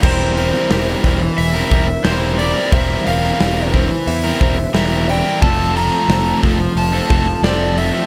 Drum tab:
CC |x---------------|----------------|----------------|
HH |--o-o-o-o-o-o-o-|o-o-o-o-o-o-o-o-|o-o-o-o-o-o-o-o-|
SD |---oo-o-----o---|---oo-------o---|----o-o-----o---|
BD |o-----o---o-----|o-----o---o-----|o-----o---o-----|